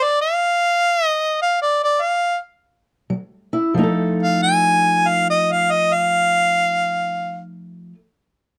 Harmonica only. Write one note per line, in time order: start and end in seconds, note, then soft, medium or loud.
0.03 0.21 D5 medium
0.21 1.06 F5 medium
1.06 1.38 D#5 medium
1.42 1.62 F5 medium
1.62 1.83 D5 medium
1.84 2.04 D5 medium
2.02 2.37 F5 medium
4.23 4.42 F5 medium
4.43 5.09 G#5 medium
5.08 5.29 F5 medium
5.30 5.54 D#5 medium
5.52 5.72 F5 medium
5.71 5.95 D#5 medium
5.94 7.39 F5 medium